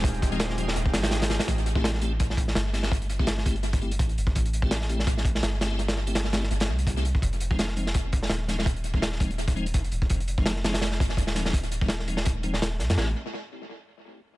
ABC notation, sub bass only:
X:1
M:4/4
L:1/16
Q:"Swing 16ths" 1/4=167
K:Flyd
V:1 name="Sub bass" clef=bass
_E,,,8 E,,,2 _A,,,4- A,,, z | A,,,12 G,,,4- | G,,,12 A,,,2 G,,,2 | A,,,12 G,,,4- |
G,,,8 G,,,2 C,,4- C,, z | F,,,12 _E,,,4- | _E,,,12 F,,,2 E,,,2 | F,,,12 _E,,,4- |
_E,,,12- E,,,2 C,, F,, | A,,,2 z12 z2 |]